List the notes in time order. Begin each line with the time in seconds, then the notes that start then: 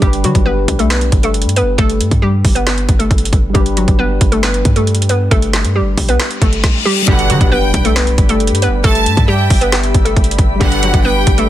Already playing: G3
0.00 G1 G3 D4 G4, kick, closed hi-hat
0.07 B4
0.13 closed hi-hat
0.24 D3 F#3 F#4, closed hi-hat
0.35 G1, kick, closed hi-hat
0.46 B3 B4
0.68 B1, kick, closed hi-hat
0.79 A3 A4, closed hi-hat
0.90 B3 B4, snare, clap, closed hi-hat
1.01 closed hi-hat
1.12 G1, kick, closed hi-hat
1.23 A3 A4, closed hi-hat
1.34 closed hi-hat
1.42 G2, closed hi-hat
1.49 closed hi-hat
1.56 B3 B4, closed hi-hat
1.62 G1
1.78 G1 A3 A4, kick, closed hi-hat
1.90 closed hi-hat
2.00 G2, closed hi-hat
2.11 G2, kick, closed hi-hat
2.22 G3 G4
2.45 G1, kick, open hi-hat
2.55 B3 B4, closed hi-hat
2.67 B3 B4, snare, clap, closed hi-hat
2.78 closed hi-hat
2.89 G1, kick, closed hi-hat
2.99 A3 A4, closed hi-hat
3.11 G1, kick, closed hi-hat
3.18 closed hi-hat
3.25 closed hi-hat
3.33 G1, kick, closed hi-hat
3.50 G3 D4
3.54 G1 G3 G4, kick, closed hi-hat
3.60 B4
3.66 closed hi-hat
3.77 F#3 F#4, closed hi-hat
3.88 G1, kick, closed hi-hat
3.99 B3 B4
4.21 G1, kick, closed hi-hat
4.32 A3 A4, closed hi-hat
4.43 B3 B4, snare, clap, closed hi-hat
4.54 closed hi-hat
4.65 G2, kick, closed hi-hat
4.76 A3 A4, closed hi-hat
4.87 closed hi-hat
4.95 closed hi-hat
5.02 closed hi-hat
5.09 B3 B4, closed hi-hat
5.31 G1 A3 A4, kick, closed hi-hat
5.42 closed hi-hat
5.53 snare, clap, closed hi-hat
5.64 G2, closed hi-hat
5.76 G3 G4
5.81 G1
5.98 B1, kick, open hi-hat
6.09 B3 B4, closed hi-hat
6.19 snare, clap, closed hi-hat, reverse cymbal
6.31 closed hi-hat
6.42 G1 A3 A4, kick, closed hi-hat
6.53 closed hi-hat
6.64 kick, snare
6.85 G3 G4
7.02 G3 D4
7.07 G1 G2 B2 D3 G3 G4 D5 F#5 B5, kick, closed hi-hat, impact
7.13 B4
7.19 closed hi-hat
7.30 D3 F#3 F#4, closed hi-hat
7.41 G1, kick, closed hi-hat
7.52 B3 B4 G5
7.74 B1, kick, closed hi-hat
7.85 A3 A4, closed hi-hat
7.96 B3 B4, snare, clap, closed hi-hat
8.07 closed hi-hat
8.18 G1, kick, closed hi-hat
8.29 A3 A4, closed hi-hat
8.40 closed hi-hat
8.47 G2, closed hi-hat
8.55 closed hi-hat
8.62 B3 B4, closed hi-hat
8.68 G1
8.84 G1 A3 A4 E5 A5, kick, closed hi-hat
8.95 closed hi-hat
9.06 G2, closed hi-hat
9.17 G2, kick, closed hi-hat
9.28 G3 G4 G5
9.50 G1, kick, open hi-hat
9.61 B3 B4, closed hi-hat
9.72 B3 B4, snare, clap, closed hi-hat
9.83 closed hi-hat
9.94 G1, kick, closed hi-hat
10.05 A3 A4, closed hi-hat
10.16 G1, kick, closed hi-hat
10.24 closed hi-hat
10.31 closed hi-hat
10.39 G1, kick, closed hi-hat
10.56 G3 D4
10.60 G1 G2 B2 D3 G3 G4 F#5, kick, closed hi-hat
10.66 B4
10.72 closed hi-hat
10.83 F#3 F#4, closed hi-hat
10.94 G1, kick, closed hi-hat
11.05 B3 B4 G5
11.27 G1, kick, closed hi-hat
11.38 A3 A4, closed hi-hat